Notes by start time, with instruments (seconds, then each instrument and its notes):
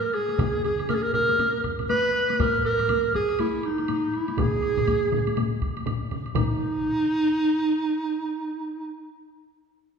Already playing: clarinet A#4
0.14 clarinet G#4, high woodblock
0.29 taiko high, high woodblock
0.39 taiko, taiko mid, taiko high, high woodblock
0.64 clarinet G#4, taiko mid, high woodblock
0.79 taiko mid, high woodblock
0.89 clarinet A#4, taiko mid, taiko high, high woodblock
0.95 clarinet G#4
1.03 clarinet A#4
1.14 clarinet A#4, taiko mid, taiko high, high woodblock
1.29 taiko high, high woodblock
1.39 taiko mid, taiko high, high woodblock
1.64 taiko, high woodblock
1.79 taiko mid, taiko high, high woodblock
1.90 clarinet B4, taiko high, high woodblock
2.29 taiko high, high woodblock
2.39 clarinet A#4, taiko, taiko low-mid, taiko high, high woodblock
2.55 taiko low-mid
2.65 clarinet A#4, taiko low-mid, high woodblock
2.79 taiko low-mid, taiko high, high woodblock
2.89 taiko, taiko high, high woodblock
3.14 clarinet G#4, taiko, taiko high, high woodblock
3.29 high woodblock
3.39 clarinet E4, taiko high, high woodblock
3.63 clarinet D#4, high woodblock
3.78 taiko high, high woodblock
3.88 taiko low-mid, taiko high, high woodblock
4.14 clarinet E4, high woodblock
4.28 taiko high, high woodblock
4.37 clarinet G#4, taiko, taiko low-mid, taiko mid, taiko high, high woodblock
4.63 high woodblock
4.77 taiko low-mid, taiko mid, taiko high, high woodblock
4.88 taiko, taiko high, high woodblock
5.12 taiko low-mid, taiko mid, taiko high, high woodblock
5.27 taiko high, high woodblock
5.37 taiko low-mid, taiko mid, taiko high, high woodblock
5.62 taiko, high woodblock
5.77 taiko high, high woodblock
5.86 taiko low-mid, taiko mid, taiko high, high woodblock
6.11 taiko low-mid, taiko mid, high woodblock
6.26 high woodblock
6.35 clarinet D#4, taiko, taiko low-mid, taiko mid, taiko high, high woodblock